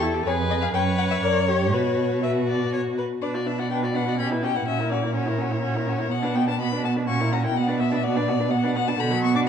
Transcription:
0.00 0.26 E2 medium
0.00 0.15 E4 soft
0.00 0.29 A4 medium
0.14 0.25 G4 soft
0.25 0.71 F2 soft
0.25 0.74 G#4 medium
0.25 0.71 B4 soft
0.25 0.35 C#5 medium
0.50 0.55 D#5 medium
0.62 0.67 F5 medium
0.74 1.22 F#2 soft
0.74 1.24 B4 soft
0.74 1.75 C#5 medium
0.74 0.82 G5 medium
0.98 1.03 F#5 medium
1.11 1.16 E5 medium
1.22 1.74 F#2 medium
1.22 1.49 A#4 soft
1.22 1.47 D5 medium
1.48 1.74 G4 soft
1.48 1.72 C#5 medium
1.73 3.02 B2 soft
1.73 2.22 F#4 soft
1.73 2.18 B4 soft
1.73 2.25 C#5 medium
2.22 3.00 F#4 soft
2.22 2.73 B4 soft
2.22 2.31 E5 medium
2.48 2.72 D5 soft
2.73 2.81 C#5 medium
2.98 3.06 B4 soft
3.22 4.63 B2 soft
3.22 3.35 D4 soft
3.22 3.36 B4 soft
3.22 3.30 D5 soft
3.34 3.48 F#4 soft
3.34 3.48 D5 soft
3.46 3.60 D4 soft
3.46 3.61 B4 soft
3.46 3.61 E5 soft
3.58 3.69 F#4 soft
3.58 3.71 D5 soft
3.58 3.70 F#5 soft
3.70 3.84 D4 soft
3.70 3.86 B4 soft
3.70 3.78 G5 soft
3.82 3.95 F#4 soft
3.82 3.98 D5 soft
3.94 4.08 D4 soft
3.94 4.10 B4 soft
3.94 4.18 F#5 medium
4.06 4.18 F#4 soft
4.06 4.20 D5 soft
4.18 4.32 C#4 soft
4.18 4.34 G4 soft
4.18 4.28 B5 medium
4.31 4.44 E4 soft
4.31 4.45 B4 soft
4.43 4.56 C#4 soft
4.43 4.58 G4 soft
4.43 4.58 G5 medium
4.54 4.66 E4 soft
4.54 4.67 B4 soft
4.54 4.67 F#5 soft
4.66 6.08 A#2 soft
4.66 4.80 C#4 soft
4.66 4.81 F#4 soft
4.66 4.91 E5 medium
4.79 4.92 E4 soft
4.79 4.93 A#4 soft
4.91 5.04 C#4 soft
4.91 5.06 F#4 soft
4.91 5.15 D5 soft
5.02 5.14 E4 soft
5.02 5.16 A#4 soft
5.14 5.27 C#4 soft
5.14 5.30 F#4 soft
5.14 6.13 C#5 medium
5.26 5.40 E4 soft
5.26 5.42 A#4 soft
5.38 5.52 C#4 soft
5.38 5.54 F#4 soft
5.51 5.62 E4 soft
5.51 5.64 A#4 soft
5.62 5.76 C#4 soft
5.62 5.78 F#4 soft
5.75 5.88 E4 soft
5.75 5.90 A#4 soft
5.87 6.00 C#4 soft
5.87 6.02 F#4 soft
5.99 6.10 E4 soft
5.99 6.12 A#4 soft
6.11 7.10 B2 soft
6.11 6.24 B3 soft
6.11 6.25 F#4 soft
6.11 6.37 F#5 medium
6.23 6.36 D4 soft
6.23 6.37 B4 soft
6.35 6.49 B3 soft
6.35 6.50 F#4 soft
6.35 6.48 G5 medium
6.47 6.59 D4 soft
6.47 6.60 B4 soft
6.47 6.60 A5 medium
6.60 6.73 B3 soft
6.60 6.74 F#4 soft
6.60 6.84 B5 medium
6.72 6.85 D4 soft
6.72 6.85 B4 soft
6.84 6.98 B3 soft
6.84 6.98 F#4 soft
6.84 6.93 A5 medium
6.96 7.07 D4 soft
6.96 7.07 B4 soft
7.08 7.55 A#2 soft
7.08 7.22 C#4 soft
7.08 7.22 F#4 soft
7.08 7.34 C#6 medium
7.20 7.34 E4 soft
7.20 7.33 A#4 soft
7.32 7.45 C#4 soft
7.32 7.45 F#4 soft
7.32 7.44 A#5 medium
7.44 7.55 E4 soft
7.44 7.55 A#4 soft
7.44 7.59 G5 medium
7.56 8.96 B2 soft
7.56 7.68 B3 soft
7.56 7.70 F#4 soft
7.56 7.79 F#5 medium
7.67 7.81 D4 soft
7.67 7.82 B4 soft
7.80 7.93 B3 soft
7.80 7.94 F#4 soft
7.80 8.05 E5 medium
7.92 8.03 D4 soft
7.92 8.03 B4 soft
8.04 8.17 B3 soft
8.04 8.18 F#4 medium
8.04 8.52 D5 medium
8.16 8.29 D4 soft
8.16 8.30 B4 soft
8.28 8.41 B3 soft
8.28 8.42 F#4 soft
8.39 8.51 D4 soft
8.39 8.52 B4 soft
8.51 8.65 B3 soft
8.51 8.65 F#4 soft
8.51 8.75 F#5 medium
8.64 8.77 D4 soft
8.64 8.77 B4 soft
8.75 8.89 B3 soft
8.75 8.90 F#4 soft
8.75 8.90 F#5 medium
8.88 8.99 D4 soft
8.88 9.00 B4 soft
8.88 9.01 A5 medium
8.99 9.39 B2 medium
8.99 9.13 D3 soft
8.99 9.49 F#4 medium
8.99 9.23 B5 medium
9.11 9.24 F#3 soft
9.23 9.36 B3 medium
9.23 9.35 C#6 medium
9.35 9.48 D4 soft
9.35 9.40 D6 medium

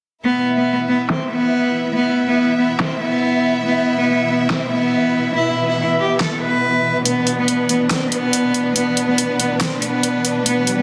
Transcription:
0.25 10.82 B2 medium
0.25 10.82 E3 medium
0.25 0.44 B3 medium
0.25 10.82 B3 medium
0.25 7.02 E4 medium
0.25 7.04 E5 medium
0.57 0.76 B3 medium
0.88 1.01 B3 medium
1.10 1.23 C4 medium
1.10 snare loud
1.31 1.87 B3 medium
1.95 2.14 B3 medium
2.27 2.46 B3 medium
2.59 2.72 B3 medium
2.80 2.93 C4 medium
2.80 snare loud
3.01 3.57 B3 medium
3.65 3.84 B3 medium
3.97 4.16 B3 medium
4.29 4.42 B3 medium
4.50 4.63 C4 medium
4.50 snare loud
4.71 5.27 B3 medium
5.35 5.54 E4 medium
5.67 5.86 E4 medium
5.99 6.12 G4 medium
6.20 6.33 A4 medium
6.20 snare loud
6.42 6.97 B4 medium
7.05 7.24 B3 medium
7.05 10.82 D4 medium
7.05 10.82 B4 medium
7.05 closed hi-hat medium
7.27 closed hi-hat soft
7.38 7.57 B3 medium
7.48 closed hi-hat medium
7.69 7.82 B3 medium
7.69 closed hi-hat soft
7.90 8.03 C4 medium
7.90 snare loud
7.90 closed hi-hat medium
8.12 8.67 B3 medium
8.12 closed hi-hat soft
8.33 closed hi-hat medium
8.54 closed hi-hat soft
8.76 8.95 B3 medium
8.76 closed hi-hat medium
8.97 closed hi-hat soft
9.08 9.27 B3 medium
9.18 closed hi-hat medium
9.39 9.52 B3 medium
9.39 closed hi-hat soft
9.61 9.74 C4 medium
9.61 snare loud
9.61 closed hi-hat medium
9.82 10.38 B3 medium
9.82 closed hi-hat soft
10.03 closed hi-hat medium
10.25 closed hi-hat soft
10.46 10.65 B3 medium
10.46 closed hi-hat medium
10.46 riser medium
10.67 closed hi-hat soft
10.78 10.82 B3 medium

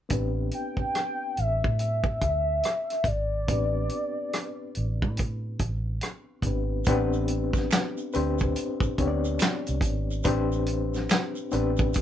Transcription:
0.09 0.50 A1 medium
0.09 3.44 B3 medium
0.09 3.45 C4 medium
0.09 3.45 D4 medium
0.09 3.46 G4 medium
0.09 kick medium
0.09 closed hi-hat medium
0.14 3.46 B4 medium
0.51 1.40 G5 loud
0.51 closed hi-hat medium
0.77 kick medium
0.95 cross-stick loud
0.95 closed hi-hat medium
1.37 1.62 A1 medium
1.37 1.80 E5 medium
1.37 closed hi-hat soft
1.64 2.18 A2 medium
1.64 kick medium
1.79 3.08 E5 medium
1.79 closed hi-hat medium
2.04 kick medium
2.21 2.61 D2 medium
2.21 kick medium
2.21 closed hi-hat medium
2.63 cross-stick loud
2.63 closed hi-hat medium
2.90 cross-stick soft
2.90 closed hi-hat soft
3.04 3.44 G#1 medium
3.04 5.60 D5 loud
3.04 kick medium
3.04 closed hi-hat medium
3.48 3.88 A1 medium
3.48 6.40 B3 medium
3.48 6.40 C4 medium
3.48 6.41 D4 medium
3.48 6.42 G4 soft
3.48 kick medium
3.48 closed hi-hat medium
3.52 6.42 B4 medium
3.89 closed hi-hat medium
4.33 cross-stick loud
4.33 closed hi-hat medium
4.75 5.04 A1 medium
4.75 closed hi-hat soft
5.02 5.56 A2 medium
5.02 kick medium
5.17 kick medium
5.17 closed hi-hat medium
5.59 5.99 A1 medium
5.59 kick medium
5.59 closed hi-hat medium
6.01 cross-stick medium
6.01 closed hi-hat medium
6.42 6.82 G#1 medium
6.42 6.86 B3 soft
6.42 6.86 C4 soft
6.42 6.87 D4 soft
6.42 6.88 G4 soft
6.42 kick medium
6.42 closed hi-hat medium
6.47 6.88 B4 medium
6.84 7.68 A1 loud
6.84 8.06 B3 loud
6.84 8.06 C4 loud
6.84 8.07 D4 loud
6.84 kick loud
6.84 closed hi-hat medium
6.84 maracas medium
6.89 8.07 G4 loud
6.89 8.07 B4 loud
7.13 maracas soft
7.28 closed hi-hat medium
7.53 kick medium
7.53 snare soft
7.53 maracas soft
7.71 finger snap medium
7.71 snare loud
7.71 clap medium
7.71 closed hi-hat medium
7.71 maracas medium
7.97 maracas soft
8.13 8.53 D2 medium
8.13 8.93 C4 medium
8.13 8.94 D4 medium
8.13 8.94 G4 medium
8.13 8.93 B4 medium
8.13 8.94 C5 loud
8.13 closed hi-hat medium
8.13 maracas soft
8.39 kick medium
8.39 maracas soft
8.56 closed hi-hat medium
8.56 maracas medium
8.80 muted fingered electric bass stroke soft
8.80 kick loud
8.80 maracas soft
8.98 9.37 D2 medium
8.98 10.17 B3 medium
8.98 10.18 C4 medium
8.98 10.18 D4 medium
8.98 10.18 G4 medium
8.98 9.07 C#5 medium
8.98 kick medium
8.98 closed hi-hat medium
9.07 10.22 D5 medium
9.25 maracas soft
9.39 finger snap medium
9.39 snare loud
9.39 clap medium
9.39 closed hi-hat medium
9.39 maracas medium
9.67 9.81 C2 medium
9.67 closed hi-hat soft
9.67 maracas soft
9.81 10.21 G#1 medium
9.81 kick medium
9.81 closed hi-hat medium
9.81 maracas medium
10.11 maracas soft
10.23 11.06 A1 loud
10.23 11.44 C4 medium
10.23 11.44 D4 loud
10.23 11.45 G4 loud
10.23 11.44 B4 loud
10.23 11.45 C5 loud
10.23 kick loud
10.23 closed hi-hat medium
10.23 maracas medium
10.52 maracas soft
10.66 closed hi-hat medium
10.94 snare soft
10.94 maracas soft
11.09 finger snap medium
11.09 snare loud
11.09 clap medium
11.09 closed hi-hat medium
11.09 maracas medium
11.35 maracas soft
11.51 11.91 A1 medium
11.51 12.02 B3 medium
11.51 12.02 C4 medium
11.51 12.02 D4 medium
11.51 12.02 G4 medium
11.51 12.02 B4 medium
11.51 closed hi-hat medium
11.51 maracas soft
11.77 kick loud
11.77 maracas soft
11.93 kick medium
11.93 closed hi-hat medium
11.93 maracas soft

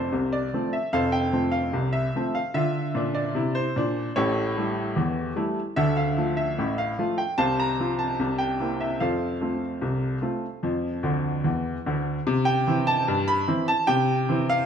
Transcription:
0.00 0.14 F1 medium
0.00 0.14 F2 medium
0.00 0.14 F3 soft
0.00 0.14 A3 soft
0.00 0.14 C4 soft
0.00 0.14 F4 medium
0.00 0.14 A4 medium
0.00 0.32 C5 medium
0.00 0.14 D5 medium
0.13 0.47 C2 medium
0.13 0.47 C3 medium
0.33 0.73 D5 medium
0.53 0.75 F3 soft
0.53 0.76 A3 soft
0.53 0.76 C4 soft
0.73 0.93 E5 medium
0.93 1.27 F1 medium
0.93 1.27 F2 medium
0.93 1.12 A4 medium
0.93 1.12 C5 medium
0.93 1.13 F5 medium
1.12 1.53 G5 medium
1.33 1.55 F3 soft
1.33 1.56 A3 soft
1.33 1.55 C4 soft
1.52 1.93 F5 medium
1.73 2.08 C2 medium
1.73 2.08 C3 medium
1.93 2.34 E5 medium
2.15 2.37 F3 soft
2.15 2.38 A3 soft
2.15 2.38 C4 soft
2.35 2.55 F5 medium
2.54 2.87 D3 medium
2.54 2.88 F4 medium
2.54 3.15 E5 medium
2.95 3.27 A#2 medium
2.95 3.28 D4 medium
3.15 3.55 D5 medium
3.35 3.67 C3 medium
3.35 3.68 E4 medium
3.55 4.16 C5 medium
3.76 4.08 A#2 medium
3.76 4.09 D4 medium
4.16 4.50 A1 medium
4.16 4.51 A2 medium
4.16 5.34 G4 medium
4.16 5.34 A4 medium
4.16 5.37 C#5 medium
4.56 4.78 G3 soft
4.56 4.79 A3 soft
4.56 4.79 E4 soft
4.96 5.31 E2 medium
4.96 5.31 E3 medium
5.36 5.58 G3 soft
5.36 5.59 A3 soft
5.36 5.59 E4 medium
5.76 6.11 D2 medium
5.76 6.11 D3 medium
5.76 5.96 A4 medium
5.76 5.97 E5 medium
5.97 6.37 F5 medium
6.17 6.39 F3 soft
6.17 6.40 A3 soft
6.17 6.40 F4 soft
6.37 6.78 E5 medium
6.58 6.93 A1 medium
6.58 6.93 A2 medium
6.78 7.19 F5 medium
6.99 7.21 F3 soft
6.99 7.21 A3 soft
6.99 7.21 F4 medium
7.18 7.38 G5 medium
7.38 7.73 C2 medium
7.38 7.73 C3 medium
7.38 7.58 C5 medium
7.38 7.58 F5 medium
7.38 7.59 A5 loud
7.60 8.00 A#5 medium
7.80 8.02 F3 soft
7.80 8.02 C4 soft
7.80 8.03 F4 soft
7.99 8.40 A5 medium
8.19 8.54 C2 medium
8.19 8.54 C3 medium
8.38 8.80 G5 medium
8.60 8.82 A#3 soft
8.60 8.83 C4 soft
8.60 8.83 E4 soft
8.81 9.01 E5 medium
9.00 9.36 F2 medium
9.00 9.35 F3 medium
9.00 11.42 A4 soft
9.00 11.42 C5 medium
9.00 11.46 F5 medium
9.41 9.64 A3 soft
9.41 9.64 C4 soft
9.41 9.65 F4 soft
9.81 10.17 C2 medium
9.81 10.17 C3 medium
10.22 10.45 A3 soft
10.22 10.45 C4 soft
10.22 10.46 F4 soft
10.63 10.98 F2 medium
10.63 10.98 F3 medium
11.03 11.35 D2 medium
11.03 11.35 D3 medium
11.44 11.76 E2 medium
11.44 11.76 E3 soft
11.86 12.17 D2 medium
11.86 12.17 D3 medium
12.27 12.62 C3 loud
12.45 12.87 G5 loud
12.67 12.90 E3 medium
12.67 12.90 C4 medium
12.67 12.90 E4 medium
12.87 13.28 A5 loud
13.08 13.43 G2 medium
13.28 13.69 B5 loud
13.48 13.71 E3 medium
13.48 13.71 C4 medium
13.48 13.71 E4 medium
13.68 13.89 A5 loud
13.87 14.23 C3 medium
13.87 14.49 G5 loud
14.29 14.52 E3 medium
14.29 14.52 C4 medium
14.29 14.53 E4 medium
14.50 14.66 F5 loud

